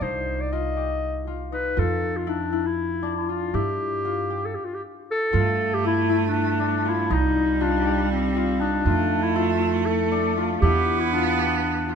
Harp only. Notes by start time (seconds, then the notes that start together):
Already playing: F4
0.02 D#4
0.52 F4
0.77 G4
1.27 F4
1.52 D#4
1.77 F4
2.27 E4
2.52 E4
3.03 D4
3.29 F4
3.54 E4
4.05 F4
4.30 G4
5.33 F4
5.85 E4
6.10 E4
6.60 D4
6.85 F4
7.11 D#4
7.61 F4
7.86 G4
8.37 F4
8.61 D#4
8.86 F4
9.36 E4
9.62 E4
10.12 D4
10.38 F4
10.64 E4
11.14 F4
11.38 G4
11.89 F4